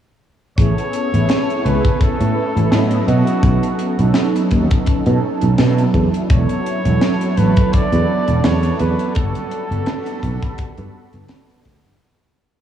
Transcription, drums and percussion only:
0.58 kick loud
0.58 closed hi-hat loud
0.78 closed hi-hat soft
0.93 closed hi-hat medium
1.14 closed hi-hat medium
1.29 snare loud
1.29 closed hi-hat loud
1.50 closed hi-hat medium
1.66 closed hi-hat medium
1.85 kick loud
1.85 closed hi-hat medium
2.01 kick loud
2.01 closed hi-hat loud
2.21 closed hi-hat medium
2.57 closed hi-hat medium
2.72 snare loud
2.72 closed hi-hat medium
2.91 closed hi-hat medium
3.08 closed hi-hat medium
3.27 closed hi-hat medium
3.43 kick loud
3.43 closed hi-hat medium
3.63 closed hi-hat medium
3.79 closed hi-hat medium
3.99 closed hi-hat medium
4.14 snare loud
4.14 closed hi-hat medium
4.36 closed hi-hat medium
4.51 kick medium
4.51 closed hi-hat medium
4.71 kick loud
4.71 closed hi-hat medium
4.86 kick loud
4.86 closed hi-hat medium
5.06 closed hi-hat soft
5.41 closed hi-hat medium
5.58 snare loud
5.58 closed hi-hat loud
5.78 closed hi-hat medium
5.94 kick medium
5.94 closed hi-hat medium
6.14 closed hi-hat medium
6.30 kick loud
6.30 closed hi-hat loud
6.49 closed hi-hat soft
6.66 closed hi-hat medium
6.85 closed hi-hat medium
7.01 snare loud
7.01 closed hi-hat medium
7.21 closed hi-hat medium
7.37 closed hi-hat medium
7.56 kick loud
7.56 closed hi-hat medium
7.73 kick loud
7.73 closed hi-hat loud
7.92 closed hi-hat medium
8.28 closed hi-hat medium
8.44 snare loud
8.44 closed hi-hat medium
8.63 closed hi-hat medium
8.79 closed hi-hat medium
8.99 closed hi-hat medium
9.15 kick loud
9.15 closed hi-hat medium
9.35 closed hi-hat medium
9.51 closed hi-hat medium
9.72 closed hi-hat medium
9.86 snare loud
9.86 closed hi-hat medium
10.06 closed hi-hat medium
10.23 kick medium
10.23 closed hi-hat medium
10.42 kick loud
10.42 closed hi-hat medium
10.58 kick loud
10.58 closed hi-hat loud
10.78 closed hi-hat soft
11.13 closed hi-hat medium
11.28 snare loud
11.28 closed hi-hat loud
11.49 closed hi-hat medium
11.65 kick medium
11.65 closed hi-hat medium
11.85 closed hi-hat medium

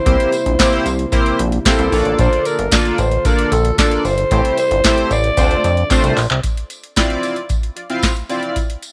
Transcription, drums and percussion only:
0.06 kick loud
0.06 closed hi-hat medium
0.20 closed hi-hat medium
0.32 closed hi-hat medium
0.32 tambourine medium
0.46 closed hi-hat medium
0.59 kick loud
0.59 snare loud
0.59 clap loud
0.59 closed hi-hat medium
0.59 tambourine medium
0.73 closed hi-hat medium
0.86 closed hi-hat medium
0.86 tambourine medium
0.99 closed hi-hat medium
1.12 kick loud
1.12 closed hi-hat medium
1.12 tambourine medium
1.26 closed hi-hat soft
1.39 closed hi-hat medium
1.52 closed hi-hat soft
1.65 kick loud
1.65 snare loud
1.65 clap medium
1.65 closed hi-hat medium
1.65 tambourine medium
1.79 closed hi-hat medium
1.92 open hi-hat medium
1.92 tambourine medium
2.05 closed hi-hat medium
2.19 kick loud
2.19 closed hi-hat loud
2.19 tambourine soft
2.33 closed hi-hat medium
2.45 closed hi-hat medium
2.45 tambourine medium
2.59 closed hi-hat medium
2.71 kick loud
2.71 snare loud
2.71 clap medium
2.71 closed hi-hat medium
2.71 tambourine loud
2.85 closed hi-hat medium
2.98 closed hi-hat medium
2.98 tambourine medium
3.11 closed hi-hat medium
3.25 kick loud
3.25 closed hi-hat loud
3.25 tambourine medium
3.39 closed hi-hat medium
3.52 closed hi-hat medium
3.52 tambourine soft
3.65 closed hi-hat medium
3.78 kick loud
3.78 snare loud
3.78 clap medium
3.78 closed hi-hat loud
3.78 tambourine medium
3.91 closed hi-hat medium
4.05 open hi-hat medium
4.05 tambourine soft
4.18 closed hi-hat medium
4.31 kick loud
4.31 closed hi-hat medium
4.31 tambourine soft
4.45 closed hi-hat medium
4.58 closed hi-hat medium
4.58 tambourine medium
4.71 closed hi-hat medium
4.84 kick loud
4.84 snare loud
4.84 clap loud
4.84 closed hi-hat medium
4.84 tambourine loud
4.98 closed hi-hat medium
5.11 closed hi-hat medium
5.11 tambourine medium
5.24 closed hi-hat medium
5.37 kick loud
5.37 closed hi-hat loud
5.37 tambourine medium
5.51 closed hi-hat medium
5.64 closed hi-hat medium
5.64 tambourine soft
5.77 closed hi-hat soft
5.90 kick loud
5.90 clap medium
5.90 closed hi-hat medium
5.90 tambourine loud
6.04 closed hi-hat medium
6.17 clap medium
6.17 open hi-hat medium
6.17 tambourine medium
6.30 clap medium
6.30 closed hi-hat soft
6.44 kick medium
6.44 closed hi-hat medium
6.44 tambourine soft
6.57 closed hi-hat soft
6.70 closed hi-hat medium
6.70 tambourine soft
6.84 closed hi-hat medium
6.96 kick loud
6.96 snare loud
6.96 clap medium
6.96 closed hi-hat medium
6.96 tambourine medium
7.10 closed hi-hat soft
7.23 closed hi-hat medium
7.23 tambourine medium
7.36 closed hi-hat soft
7.49 kick loud
7.49 closed hi-hat medium
7.49 tambourine soft
7.63 closed hi-hat medium
7.77 closed hi-hat medium
7.90 closed hi-hat soft
8.02 kick loud
8.02 snare loud
8.02 clap medium
8.02 closed hi-hat medium
8.02 tambourine medium
8.16 closed hi-hat medium
8.29 closed hi-hat medium
8.29 tambourine soft
8.43 closed hi-hat soft
8.56 kick medium
8.56 closed hi-hat medium
8.56 tambourine soft
8.70 closed hi-hat medium
8.82 closed hi-hat medium
8.82 tambourine medium

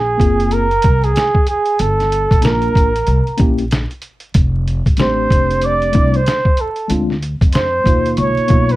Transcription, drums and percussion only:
0.20 kick medium
0.20 closed hi-hat medium
0.40 closed hi-hat medium
0.51 closed hi-hat medium
0.71 closed hi-hat soft
0.82 kick medium
0.82 closed hi-hat medium
1.04 closed hi-hat medium
1.16 snare loud
1.16 closed hi-hat medium
1.35 kick medium
1.47 closed hi-hat medium
1.66 closed hi-hat medium
1.79 closed hi-hat medium
2.00 snare soft
2.00 closed hi-hat soft
2.12 closed hi-hat medium
2.31 kick medium
2.31 closed hi-hat medium
2.42 snare loud
2.42 closed hi-hat medium
2.62 closed hi-hat soft
2.75 kick medium
2.75 closed hi-hat medium
2.96 closed hi-hat medium
3.07 closed hi-hat medium
3.27 closed hi-hat soft
3.38 kick medium
3.38 closed hi-hat medium
3.58 closed hi-hat medium
3.71 snare loud
3.71 closed hi-hat medium
3.91 closed hi-hat soft
4.02 closed hi-hat medium
4.20 closed hi-hat soft
4.34 kick loud
4.34 closed hi-hat medium
4.68 closed hi-hat medium
4.86 kick medium
4.86 closed hi-hat soft
4.97 snare loud
4.97 closed hi-hat medium
5.30 kick medium
5.30 closed hi-hat medium
5.51 closed hi-hat medium
5.62 closed hi-hat medium
5.82 closed hi-hat soft
5.93 kick medium
5.93 closed hi-hat medium
6.14 closed hi-hat soft
6.26 snare loud
6.26 closed hi-hat medium
6.45 kick medium
6.57 closed hi-hat medium
6.76 closed hi-hat soft
6.90 closed hi-hat medium
7.10 snare soft
7.22 closed hi-hat medium
7.41 kick medium
7.41 closed hi-hat medium
7.53 snare loud
7.53 closed hi-hat medium
7.86 kick medium
7.86 closed hi-hat medium
8.06 closed hi-hat medium
8.17 closed hi-hat medium
8.37 closed hi-hat soft
8.48 kick medium
8.48 closed hi-hat medium
8.69 closed hi-hat medium

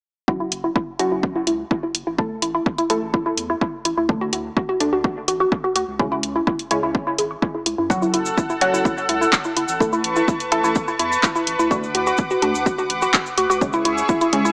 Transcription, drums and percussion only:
0.28 kick loud
0.52 closed hi-hat loud
0.76 kick loud
0.99 closed hi-hat loud
1.23 kick loud
1.47 closed hi-hat medium
1.71 kick loud
1.95 closed hi-hat loud
2.18 kick loud
2.42 closed hi-hat loud
2.66 kick loud
2.78 closed hi-hat medium
2.90 closed hi-hat loud
3.14 kick loud
3.38 closed hi-hat loud
3.61 kick loud
3.85 closed hi-hat loud
4.09 kick loud
4.33 closed hi-hat loud
4.57 kick loud
4.80 closed hi-hat loud
5.04 kick loud
5.28 closed hi-hat loud
5.52 kick loud
5.76 closed hi-hat loud
5.99 kick loud
6.23 closed hi-hat loud
6.47 kick loud
6.59 closed hi-hat medium
6.71 closed hi-hat loud
6.95 kick loud
7.18 closed hi-hat loud
7.42 kick loud
7.66 closed hi-hat loud
7.90 kick loud
7.90 cabasa medium
8.02 cabasa soft
8.14 closed hi-hat loud
8.26 cabasa medium
8.38 kick loud
8.38 cabasa medium
8.50 cabasa soft
8.61 closed hi-hat loud
8.74 cabasa medium
8.85 kick loud
8.85 cabasa medium
8.98 cabasa soft
9.09 closed hi-hat loud
9.22 cabasa medium
9.33 kick loud
9.33 clap loud
9.33 cabasa medium
9.44 cabasa soft
9.57 closed hi-hat loud
9.68 cabasa medium
9.80 kick loud
9.80 cabasa medium
9.93 cabasa soft
10.04 closed hi-hat loud
10.16 cabasa medium
10.28 kick loud
10.28 cabasa medium
10.40 closed hi-hat medium
10.40 cabasa soft
10.52 closed hi-hat medium
10.64 cabasa medium
10.75 kick loud
10.75 cabasa medium
10.88 cabasa soft
10.99 closed hi-hat loud
11.12 cabasa medium
11.23 kick loud
11.23 clap loud
11.23 cabasa medium
11.36 cabasa soft
11.47 closed hi-hat loud
11.60 cabasa medium
11.71 kick loud
11.71 cabasa medium
11.83 cabasa soft
11.95 closed hi-hat loud
12.07 cabasa medium
12.18 kick loud
12.18 cabasa medium
12.31 cabasa soft
12.42 closed hi-hat loud
12.55 cabasa medium
12.66 kick loud
12.66 cabasa medium
12.78 cabasa soft
12.90 closed hi-hat loud
13.02 cabasa medium
13.14 kick loud
13.14 clap loud
13.14 cabasa medium
13.26 cabasa soft
13.38 closed hi-hat loud
13.51 cabasa medium
13.61 kick loud
13.61 cabasa medium
13.73 cabasa soft
13.85 closed hi-hat loud
13.98 cabasa medium
14.09 kick loud
14.09 cabasa medium
14.21 closed hi-hat medium
14.21 cabasa soft
14.33 closed hi-hat loud
14.45 cabasa medium

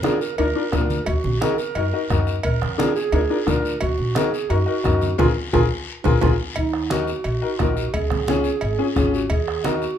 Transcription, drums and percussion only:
0.03 bombo rim medium
0.03 high conga medium
0.03 short guiro medium
0.21 short guiro medium
0.38 cowbell medium
0.38 high conga soft
0.38 long guiro medium
0.72 bombo low medium
0.72 bombo rim medium
0.72 high conga medium
0.72 low conga medium
0.72 low timbale medium
0.72 short guiro medium
0.90 high conga medium
0.90 short guiro medium
1.06 bombo low medium
1.06 cowbell loud
1.06 high conga soft
1.06 long guiro medium
1.24 high conga medium
1.41 bombo rim medium
1.41 high conga loud
1.41 short guiro medium
1.58 short guiro medium
1.75 cowbell medium
1.75 high conga soft
1.75 long guiro medium
2.10 bombo low medium
2.10 bombo rim medium
2.10 high conga medium
2.10 short guiro medium
2.27 short guiro medium
2.43 bombo low medium
2.43 cowbell loud
2.43 high conga soft
2.43 long guiro medium
2.62 bombo rim medium
2.62 high conga medium
2.79 bombo rim medium
2.79 high conga loud
2.79 short guiro medium
2.96 short guiro medium
3.12 cowbell medium
3.12 high conga soft
3.12 long guiro medium
3.47 bombo low medium
3.47 bombo rim medium
3.47 high conga medium
3.47 low conga medium
3.47 short guiro medium
3.65 short guiro medium
3.81 bombo low medium
3.81 cowbell loud
3.81 high conga soft
3.81 long guiro medium
4.15 bombo rim medium
4.15 high conga loud
4.15 short guiro medium
4.34 short guiro medium
4.50 cowbell medium
4.50 high conga soft
4.50 long guiro medium
4.84 bombo low medium
4.84 bombo rim medium
4.84 high conga medium
4.84 short guiro medium
5.01 high conga medium
5.01 short guiro medium
5.18 bombo low loud
5.18 high conga loud
5.18 high timbale loud
5.18 long guiro loud
5.53 bombo low medium
5.53 high conga loud
5.53 high timbale loud
5.53 long guiro medium
6.04 bombo low loud
6.04 high conga medium
6.04 high timbale loud
6.04 long guiro loud
6.21 bombo low loud
6.21 high conga loud
6.21 high timbale loud
6.21 long guiro loud
6.56 bombo low medium
6.56 cowbell loud
6.56 high conga soft
6.56 long guiro medium
6.73 bombo rim medium
6.90 bombo rim medium
6.90 high conga loud
6.90 short guiro medium
7.07 short guiro medium
7.24 cowbell medium
7.24 high conga soft
7.24 long guiro medium
7.59 bombo low medium
7.59 bombo rim medium
7.59 high conga medium
7.59 low timbale medium
7.59 short guiro medium
7.77 short guiro medium
7.94 bombo low medium
7.94 cowbell loud
7.94 high conga soft
7.94 long guiro medium
8.10 bombo rim medium
8.10 high conga medium
8.10 low conga medium
8.28 bombo rim medium
8.28 high conga loud
8.28 short guiro medium
8.44 short guiro medium
8.61 cowbell medium
8.61 high conga soft
8.61 long guiro medium
8.96 bombo low medium
8.96 bombo rim medium
8.96 high conga medium
8.96 low conga medium
8.96 short guiro medium
9.14 short guiro medium
9.30 bombo low medium
9.30 cowbell loud
9.30 high conga soft
9.30 long guiro medium
9.48 bombo rim medium
9.64 bombo rim medium
9.64 high conga medium
9.64 short guiro medium
9.82 short guiro medium

